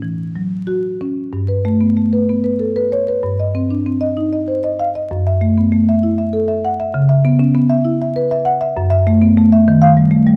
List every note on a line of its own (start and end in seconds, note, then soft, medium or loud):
0.00 1.31 A2 medium
0.00 0.56 E3 medium
0.00 0.23 C#4 medium
0.36 0.89 F#3 medium
0.67 1.21 F#4 medium
1.01 1.35 C#4 medium
1.33 3.20 G2 medium
1.48 1.75 B4 medium
1.65 1.92 A3 medium
1.81 1.98 B3 medium
1.97 2.23 A3 medium
2.13 2.39 B4 medium
2.29 2.56 B3 medium
2.44 2.71 B4 medium
2.59 2.86 A4 medium
2.76 3.03 B4 medium
2.92 3.09 C#5 medium
3.08 3.25 B4 medium
3.23 5.06 G2 medium
3.39 3.65 D#5 medium
3.55 3.80 C4 medium
3.70 3.87 D4 medium
3.86 4.11 C4 medium
4.01 4.26 D#5 medium
4.17 4.42 D#4 medium
4.33 4.58 D#5 medium
4.48 4.73 C5 medium
4.64 4.89 D#5 medium
4.80 4.95 F5 medium
4.95 5.11 D#5 medium
5.11 6.92 F#2 medium
5.27 5.51 E5 medium
5.41 5.66 A3 medium
5.58 5.73 B3 medium
5.72 5.97 A3 medium
5.89 6.13 E5 medium
6.03 6.28 E4 medium
6.18 6.43 E5 medium
6.33 6.59 A4 medium
6.48 6.74 E5 medium
6.65 6.80 F#5 medium
6.80 6.95 E5 medium
6.94 8.73 C#3 medium
7.09 7.34 E5 medium
7.25 7.49 B3 medium
7.39 7.55 C#4 medium
7.55 7.80 B3 medium
7.70 7.95 E5 medium
7.85 8.10 E4 medium
8.02 8.26 E5 medium
8.16 8.41 B4 medium
8.31 8.56 E5 medium
8.45 8.61 F#5 medium
8.61 8.77 E5 medium
8.77 9.65 F#2 loud
8.90 9.15 E5 loud
9.07 9.31 A3 medium
9.22 9.37 B3 medium
9.37 9.62 A3 medium
9.52 9.68 E5 medium
9.68 10.37 D#3 medium
9.82 10.06 F5 loud
9.97 10.21 G3 medium
10.11 10.27 A3 medium
10.27 10.37 G3 medium